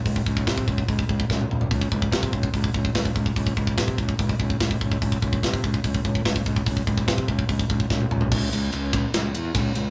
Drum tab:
CC |----------------|----------------|----------------|----------------|
RD |----------------|----------------|----------------|----------------|
HH |o---o---o-------|o---o---o---o---|o---o---o---o---|o---o---o---o---|
SD |----o-------o---|----o-------o---|----o-------o---|----o-------o---|
T1 |-------------o--|----------------|----------------|----------------|
T2 |--------------o-|----------------|----------------|----------------|
FT |---------------o|----------------|----------------|----------------|
BD |ooooooooooooo---|oooooooooooooooo|oooooooooooooooo|oooooooooooooooo|

CC |----------------|x---------------|
RD |----------------|--x-x-x-x-x-x-x-|
HH |o---o---o-------|----------------|
SD |----o-------o---|--------o-------|
T1 |-------------o--|----------------|
T2 |--------------o-|----------------|
FT |---------------o|----------------|
BD |ooooooooooooo---|o-----o-----o---|